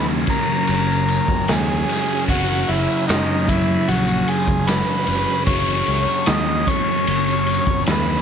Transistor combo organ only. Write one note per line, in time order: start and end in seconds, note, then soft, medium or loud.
0.30 1.53 A#4 medium
1.48 2.25 G#4 medium
2.30 2.70 F#4 medium
2.68 3.06 E4 medium
3.07 3.49 D#4 medium
3.48 3.90 E4 medium
3.88 4.30 F#4 medium
4.28 4.69 G#4 medium
4.67 5.44 B4 loud
5.47 6.30 C#5 loud
6.26 6.68 D#5 medium
6.67 7.84 C#5 loud
7.91 8.22 B4 medium